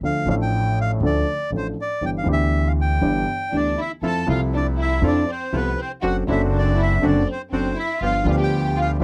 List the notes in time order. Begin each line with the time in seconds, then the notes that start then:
0.01 D2 D3 F3 A3 D4 A4
0.05 F5
0.26 A1 A2 F3 A3 D4 A4
0.30 F5
0.42 G5
0.81 F5
1.00 D2 D3 F3 A3 D4 A4
1.06 D5
1.51 A1 A2 F3 A3 D4 A4
1.57 C5
1.81 D5
2.01 G1 G2 E3 B3 D4 G4
2.05 G5
2.18 F5
2.24 D2 D3 E3 B3 D4
2.29 G4
2.33 E5
2.67 F5
2.81 G5
3.01 G1 G2 E3 B3 D4 G4
3.52 D2 D3 E3 B3 D4 G4
3.56 D5
3.79 E4 E5
4.02 F2 F3 A3 C4 E4 F4 A4
4.07 A5
4.26 C2 C3 F3 A3 C4 E4 F4 A4
4.30 F5
4.54 D4 D5
4.78 E4 E5
5.02 F2 F3 A3 C4 D4 E4 F4 A4
5.07 D5
5.29 C4 C5
5.52 C2 C3 F3 A3 B3 C4 E4 F4 A4
5.57 B4
5.78 C4 C5
6.02 F#1 F#2 F#3 C4 D4 F#4 A4
6.07 F#5
6.27 F#1 F#2 F#3 C4 D4 E4 F#4 A4
6.32 E5
6.51 D4
6.58 D5
6.75 E4
6.82 E5
7.00 F#1 F#2 F#3 C4 D4 F#4 A4
7.07 D5
7.26 C4
7.32 C5
7.51 F#1 F#2 F#3 C4 D4 F#4 A4 C5
7.77 E4 E5
8.01 G1 G2 F3 B3 D4 F4 G4
8.05 F5
8.24 D2 D3 F3 B3 D4 F4 G4
8.29 G4 F5
8.38 G4
8.43 G5
8.77 F4
8.81 F5
9.00 G1 G2 F3 B3 D4